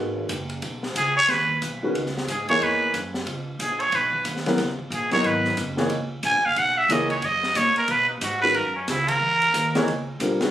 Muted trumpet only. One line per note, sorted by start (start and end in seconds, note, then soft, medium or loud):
0.97 1.15 G#4 medium
1.17 1.31 C#5 loud
1.30 1.62 B4 loud
2.30 2.48 G#4 medium
2.50 2.65 C#5 loud
2.63 2.95 B4 medium
3.62 3.82 G#4 medium
3.81 3.97 C#5 loud
3.95 4.27 B4 medium
4.94 5.12 G#4 medium
5.13 5.28 C#5 loud
5.26 5.59 B4 medium
6.26 6.47 G#5 medium
6.46 6.60 F5 loud
6.59 6.79 F#5 medium
6.78 6.93 E5 medium
6.92 7.11 D#5 medium
7.11 7.27 C#5 medium
7.25 7.59 D#5 loud
7.57 7.77 C#5 medium
7.77 7.93 A#4 medium
7.91 8.09 B4 loud
8.10 8.25 D#4 medium
8.24 8.41 F#4 medium
8.42 8.57 B4 loud
8.56 8.75 A#4 medium
8.76 8.91 C#4 medium
8.89 9.10 E4 medium
9.09 9.87 A#4 loud